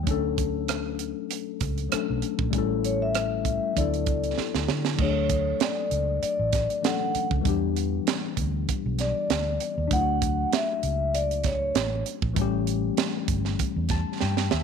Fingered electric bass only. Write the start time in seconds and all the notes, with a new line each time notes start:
0.07 D2
1.62 C#2
1.93 muted fingered electric bass stroke
2.10 B1
2.40 A#1
2.54 A1
3.77 D2
4.07 C#2
4.38 muted fingered electric bass stroke
4.55 D2
4.69 D3
4.99 D2
5.92 C#2
6.23 muted fingered electric bass stroke
6.39 A1
7.15 muted fingered electric bass stroke
7.31 C#2
7.45 E2
8.38 D2
8.69 muted fingered electric bass stroke
8.86 B1
9.30 D2
9.78 D#2
9.92 D2
10.83 C#2
11.75 A1
12.23 A#1
12.37 A1
13.28 G1
13.60 muted fingered electric bass stroke
13.76 E2
14.22 G2
14.52 D#2